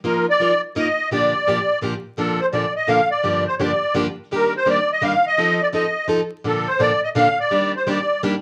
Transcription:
0.04 F3 A#3 D#4 F4 A#4
0.30 D5
0.40 F3 A#3 D#4 F4 A#4
0.75 F3 A#3 D#4 F4 A#4 D#5
1.11 A#2 D3 F3 A#3 D4 G4 D5
1.47 A#2 D3 F3 A#3 D4 G4
1.81 A#2 D3 F3 A#3 D4 G4
2.17 A#2 D3 F3 A#3 D4 A4
2.40 C5
2.53 A#2 D3 F3 A#3 D4 A4 D5
2.76 D#5
2.87 A#2 D3 F3 A#3 D4 A4 F5
3.11 D5
3.23 G2 D3 F3 A#3 D4 G4
3.47 C5
3.59 G2 D3 F3 A#3 D4 G4 C#5
3.63 D5
3.94 G2 D3 F3 A#3 D4 G4
4.31 D#3 G3 A#3 D4 G4 A#4
4.57 C5
4.66 D#3 G3 A#3 D4 G4 D5
4.92 D#5
5.02 D#3 G3 A#3 D4 G4 F5
5.27 D#5
5.38 F3 C4 D#4 A4
5.62 D5
5.73 F3 C4 D#4 A4 D#5
6.08 F3 C4 D#4 A4
6.44 A#2 D3 F3 A#3 D4 A4
6.68 C5
6.79 A#2 D3 F3 A#3 D4 A4 D5
7.04 D#5
7.15 A#2 D3 F3 A#3 D4 A4 F5
7.40 D5
7.50 D#3 G3 A#3 D4 G4
7.76 C5
7.87 D#3 G3 A#3 D4 G4 D5
8.23 D#3 G3 A#3 D4 G4

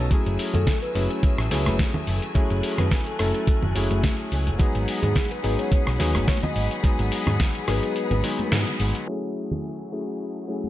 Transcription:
0.10 F#3 A3 C#4 E4 G#4 G#5 E6, muted picked electric bass stroke, kick, closed hi-hat
0.26 F#1, closed hi-hat
0.39 open hi-hat
0.54 F#2 A4, closed hi-hat, low conga
0.67 kick, snare, closed hi-hat
0.82 B4, closed hi-hat
0.95 F#1 F#3 A3 C#4 E4 G#4 B4, open hi-hat
1.10 C#5, closed hi-hat
1.23 muted picked electric bass stroke, kick, closed hi-hat
1.38 A1, cross-stick
1.51 C#2 F#3 A3 C#4 E4 G#4 B4, snare, open hi-hat
1.66 F#1, cross-stick, closed hi-hat, high conga
1.79 kick, snare, closed hi-hat, high conga
1.94 low conga
2.07 F#1, open hi-hat
2.22 closed hi-hat
2.35 F#3 A3 C#4 E4 G#4 F#6, muted picked electric bass stroke, kick, closed hi-hat
2.50 F#1, closed hi-hat
2.63 open hi-hat
2.78 F#2 B4, cross-stick, closed hi-hat, low conga
2.91 B4, kick, snare, closed hi-hat
3.06 A4, closed hi-hat
3.19 F#1 F#3 A3 C#4 E4 A4, cross-stick, open hi-hat
3.34 closed hi-hat
3.47 kick, closed hi-hat
3.63 F#1, low conga
3.75 F#1 F#3 A3 C#4 E4 G#4, open hi-hat
3.91 F#1, closed hi-hat, high conga
4.03 kick, snare, closed hi-hat, high conga
4.32 C#2, open hi-hat
4.47 F#1, closed hi-hat
4.59 F#3 G#3 B3 D#4 G#4 F#5 B5, kick, closed hi-hat
4.75 G#1, closed hi-hat
4.88 open hi-hat
5.03 G#2 G#4, closed hi-hat, low conga
5.16 kick, snare, closed hi-hat
5.31 B4, closed hi-hat
5.43 G#1 F#3 G#3 B3 D#4 G#4 B4, open hi-hat
5.59 C#5, closed hi-hat
5.72 muted picked electric bass stroke, kick, closed hi-hat
5.87 B1, cross-stick
5.98 D#2 F#3 G#3 B3 D#4 G#4, snare, open hi-hat
6.15 G#1, cross-stick, closed hi-hat, high conga
6.28 C#5, kick, snare, closed hi-hat, high conga
6.43 D#5, low conga
6.56 G#1 D#5, open hi-hat
6.71 closed hi-hat
6.83 F#3 G#3 B3 D#4 G#4, kick, closed hi-hat
6.99 G#1, closed hi-hat
7.12 open hi-hat
7.27 G#2, cross-stick, closed hi-hat, low conga
7.40 kick, snare, closed hi-hat
7.55 closed hi-hat
7.67 G#1 F#3 G#3 B3 D#4 G#4 B4, cross-stick, open hi-hat
7.83 B4, closed hi-hat
7.96 closed hi-hat
8.11 G#1, closed hi-hat, low conga
8.23 F#3 G#3 B3 D#4 G#4, open hi-hat
8.39 muted picked electric bass stroke, closed hi-hat, high conga
8.52 G#2, snare, closed hi-hat, high conga
8.67 closed hi-hat
8.80 G#1, open hi-hat
8.95 closed hi-hat
9.07 F#3 A3 C#4 E4 G#4 F#5, tambourine
9.51 tambourine, low conga
9.65 tambourine
9.80 tambourine
9.92 F#3 A3 C#4 E4 G#4
10.07 tambourine
10.20 tambourine
10.35 tambourine
10.48 F#3 A3 C#4 E4 G#4
10.64 tambourine, high conga

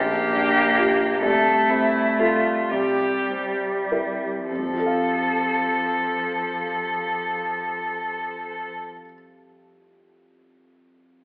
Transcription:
Already playing: A#1 A#3 G4
0.33 D4
0.77 F4 G4
1.21 C2 A3 A4
1.69 C4 E4
2.19 F4 A4
2.69 C2 G3 G4
3.30 C4
3.92 E4 A#4
4.48 F2 F3 A4
4.59 F3
4.66 C4
4.73 F4
4.79 A4
4.86 F5

